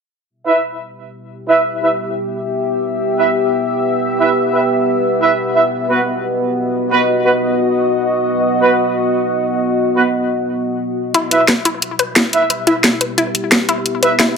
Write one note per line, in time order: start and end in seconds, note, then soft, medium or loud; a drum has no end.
0.30 11.11 B3 medium
0.30 5.68 G4 medium
0.30 5.68 E5 medium
0.47 0.57 E4 medium
0.47 0.57 B4 medium
0.47 0.57 E5 medium
1.48 1.58 E4 medium
1.48 1.58 B4 medium
1.48 1.58 E5 medium
1.82 1.88 E4 medium
1.82 1.88 B4 medium
1.82 1.88 E5 medium
3.18 3.28 E4 medium
3.18 3.28 B4 medium
3.18 3.28 E5 loud
4.20 4.29 E4 medium
4.20 4.29 B4 medium
4.20 4.29 E5 loud
4.53 4.60 E4 medium
4.53 4.60 B4 medium
4.53 4.60 E5 medium
5.21 5.31 E4 medium
5.21 5.31 B4 medium
5.21 5.31 E5 loud
5.55 5.61 E4 medium
5.55 5.61 B4 medium
5.55 5.61 E5 medium
5.72 11.11 F#4 medium
5.72 11.11 D#5 medium
5.89 5.99 B3 medium
5.89 5.99 F#4 medium
5.89 5.99 B4 medium
6.91 7.01 B3 medium
6.91 7.01 F#4 medium
6.91 7.01 B4 loud
7.25 7.31 B3 medium
7.25 7.31 F#4 medium
7.25 7.31 B4 medium
8.60 8.70 B3 medium
8.60 8.70 F#4 medium
8.60 8.70 B4 loud
9.96 10.02 B3 medium
9.96 10.02 F#4 medium
9.96 10.02 B4 medium
11.14 14.37 B3 medium
11.14 11.29 E4 loud
11.14 14.37 G4 medium
11.14 14.37 E5 medium
11.14 closed hi-hat medium
11.31 11.41 E4 medium
11.31 11.41 B4 medium
11.31 11.41 E5 medium
11.31 closed hi-hat medium
11.48 11.58 B4 medium
11.48 snare loud
11.48 closed hi-hat medium
11.65 11.80 E4 loud
11.65 closed hi-hat medium
11.82 closed hi-hat medium
11.99 12.09 B4 medium
11.99 closed hi-hat medium
12.16 12.31 E4 loud
12.16 snare loud
12.16 closed hi-hat medium
12.33 12.43 E4 medium
12.33 12.43 B4 medium
12.33 12.43 E5 loud
12.33 closed hi-hat medium
12.50 12.60 B4 medium
12.50 closed hi-hat medium
12.67 12.82 E4 loud
12.67 12.73 E4 medium
12.67 12.73 B4 medium
12.67 12.73 E5 medium
12.67 closed hi-hat medium
12.84 snare loud
12.84 closed hi-hat medium
13.01 13.11 B4 medium
13.01 closed hi-hat medium
13.18 13.33 E4 loud
13.18 closed hi-hat medium
13.35 closed hi-hat medium
13.52 13.62 B4 medium
13.52 snare loud
13.52 closed hi-hat medium
13.69 13.84 E4 loud
13.69 closed hi-hat medium
13.86 closed hi-hat medium
14.03 14.12 E4 medium
14.03 14.12 B4 medium
14.03 14.13 B4 medium
14.03 14.12 E5 medium
14.03 closed hi-hat medium
14.19 14.34 E4 loud
14.19 snare loud
14.19 closed hi-hat medium